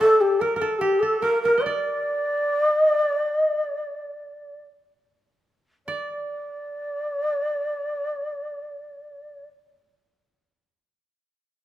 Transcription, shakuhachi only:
0.01 0.22 A4 loud
0.21 0.42 G4 medium
0.40 0.57 A#4 medium
0.57 0.74 A4 medium
0.57 0.62 A#4 medium
0.74 0.80 A4 medium
0.79 1.01 G4 medium
1.00 1.20 A4 medium
1.21 1.41 A#4 medium
1.42 1.64 A#4 medium
1.63 2.72 D5 medium
2.72 2.95 D#5 medium
2.95 3.32 D5 medium
3.32 3.55 D#5 medium
3.55 4.63 D5 medium
5.87 9.46 D5 medium

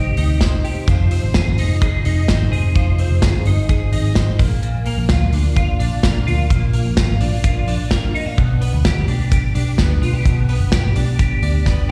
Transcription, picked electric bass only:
0.00 0.11 C2 medium
0.18 0.58 D2 medium
0.87 1.18 F1 medium
1.23 1.33 G#1 medium
1.35 1.55 G#1 medium
1.58 1.98 F1 medium
2.05 2.25 F1 medium
2.29 2.49 G#1 medium
2.51 2.72 F1 medium
2.76 3.05 F1 medium
3.10 3.20 F1 medium
3.23 3.42 G1 medium
3.46 3.85 G1 medium
3.92 4.32 G#1 medium
4.39 4.89 A#1 medium
4.98 5.08 A#1 medium
5.10 5.30 D2 medium
5.33 5.73 D2 medium
5.80 6.00 A#1 medium
6.03 6.23 A#1 medium
6.27 6.47 D2 medium
6.50 6.80 A#1 loud
6.86 6.96 A#1 medium
6.97 7.17 G#1 medium
7.21 7.61 A#1 medium
7.67 8.07 A#1 medium
8.38 8.68 B1 medium
8.73 8.83 D2 medium
8.85 9.05 D2 medium
9.08 9.48 B1 medium
9.55 9.75 B1 medium
9.79 9.99 D2 medium
10.02 10.22 B1 medium
10.25 10.55 B1 medium
10.60 10.70 G1 medium
10.73 10.92 B1 medium
10.96 11.36 B1 medium
11.43 11.82 D2 medium

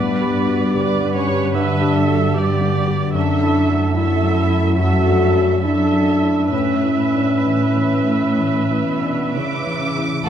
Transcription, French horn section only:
0.00 1.12 B3 medium
1.15 1.55 C#4 medium
1.55 2.33 D4 medium
3.15 3.92 D4 medium
3.96 4.78 E4 medium
4.78 5.63 F#4 medium
5.63 6.51 D4 medium
6.52 9.82 C#4 soft

